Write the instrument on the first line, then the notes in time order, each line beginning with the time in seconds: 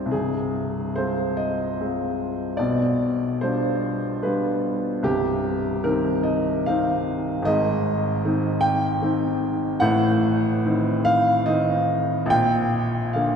upright piano
Already playing: G3 C4 D#4 C5 D5
0.06 C2
0.11 C1 G#4
0.96 G#3 C4 F4 C5
1.37 D#5
1.80 G#3 C4 F4
2.57 B1 B2 D5
3.41 G3 D4 F4 C5
4.23 G3 D4 F4 B4
5.03 C1 C2 G4
5.84 D#3 C4 D#4 A#4
6.23 D#5
6.66 D#3 C4 D#4 F5
7.42 G#1 D#5
7.47 G#2
8.25 D#3 C4 D#4
8.61 G5
9.02 D#3 C4 D#4
9.80 A1 A2 F#5
10.65 D#3 C4 D#4
11.05 F5
11.46 D#3 C4 D#4 D#5
12.26 A#1
12.30 A#2 G5
13.13 D3 A#3 F4 F5